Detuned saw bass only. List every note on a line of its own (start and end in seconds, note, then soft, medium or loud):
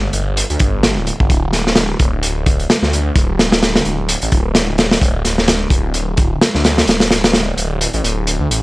0.13 0.43 G1 medium
0.50 0.57 D2 medium
0.60 0.98 G1 loud
0.97 1.11 D1 loud
1.20 1.27 G1 medium
1.30 1.94 D1 medium
2.00 2.64 D1 medium
2.82 3.11 D2 medium
3.15 3.80 D1 medium
3.86 4.15 D1 medium
4.23 4.29 A1 medium
4.32 4.97 D1 loud
5.01 5.66 D1 loud
5.70 6.36 D1 medium
6.55 6.83 D2 medium
6.88 7.53 D1 loud
7.57 7.87 D1 medium
7.94 8.01 A1 medium
8.04 8.40 D1 loud
8.40 8.47 D2 medium
8.50 8.60 A1 medium